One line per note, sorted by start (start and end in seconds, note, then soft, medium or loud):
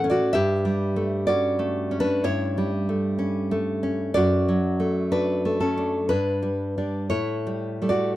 0.00 0.30 A2 medium
0.00 0.19 E3 medium
0.00 0.34 A3 medium
0.04 0.34 C#4 medium
0.10 0.32 F#4 medium
0.10 0.33 D5 medium
0.33 2.22 G2 medium
0.33 1.25 G4 medium
0.33 1.24 E5 loud
0.65 2.09 G3 soft
0.96 1.28 A3 soft
1.27 1.90 C#4 soft
1.27 1.97 F#4 medium
1.27 1.98 D5 medium
1.59 2.88 A3 soft
1.91 2.88 C#4 medium
2.00 2.23 D4 medium
2.00 2.25 B4 medium
2.24 4.11 G2 medium
2.24 2.70 E4 medium
2.24 2.71 C#5 medium
2.58 4.00 G3 soft
2.89 3.50 A3 soft
3.19 3.82 C#4 soft
3.51 4.15 A3 medium
3.83 4.15 C#4 soft
4.14 6.06 F#2 medium
4.14 5.09 F#4 medium
4.14 5.08 D5 medium
4.49 5.95 F#3 soft
4.80 5.44 A3 soft
5.12 5.58 D4 medium
5.12 5.59 B4 medium
5.45 6.10 A3 soft
5.60 6.07 C#4 soft
5.60 6.08 A4 medium
5.77 6.09 D4 soft
6.09 7.07 G2 medium
6.09 6.77 D4 medium
6.09 7.06 B4 medium
6.42 6.76 G3 soft
6.78 7.08 G3 soft
6.78 7.08 D4 soft
7.10 8.13 A2 soft
7.10 7.86 E4 medium
7.10 7.86 C#5 medium
7.47 7.80 G3 soft
7.82 8.13 G3 soft
7.82 8.14 A3 soft
7.89 8.15 F#4 soft
7.89 8.15 D5 medium